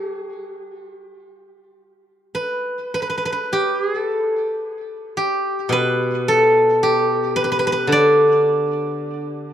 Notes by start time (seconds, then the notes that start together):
Already playing: G4 A4 B4
2.35 B4
2.94 B4
3.02 B4
3.10 B4
3.18 B4
3.25 B4
3.32 B4
3.53 G4
3.83 G#4
4.01 A4
5.17 G4
5.69 B2 B4
6.28 A4
6.83 G4
7.36 B4
7.44 B4
7.52 B4
7.59 B4
7.67 B4
7.72 B4
7.87 D3
7.92 D5